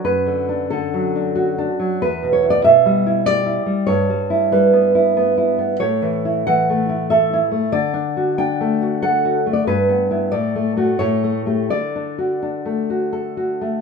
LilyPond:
\new Staff \with { instrumentName = "Nylon-string guitar" } { \time 3/4 \key d \major \tempo 4 = 93 << { b'4 a'4. r8 | b'8 cis''16 d''16 e''4 d''4 | cis''4 b'4. r8 | cis''4 fis''4 e''4 |
d''4 g''4 fis''8. d''16 | b'4 d''4 cis''4 | d''2~ d''8 r8 | } \\ { \tuplet 3/2 { fis,8 d8 d'8 d8 fis8 d'8 fis'8 d'8 fis8 } | \tuplet 3/2 { e,8 b,8 e'8 b,8 g8 e'8 g'8 e'8 g8 } | \tuplet 3/2 { g,8 g8 e'8 g8 b8 e'8 b8 e'8 b8 } | \tuplet 3/2 { a,8 e8 e'8 e8 a8 e'8 a'8 e'8 a8 } |
\tuplet 3/2 { d8 d'8 fis'8 d'8 a8 fis'8 a'8 fis'8 a8 } | \tuplet 3/2 { g,8 b8 <b e'>8 a,8 a8 <a fis'>8 a,8 a8 <a g'>8 } | \tuplet 3/2 { d8 d'8 fis'8 d'8 a8 fis'8 a'8 fis'8 a8 } | } >> }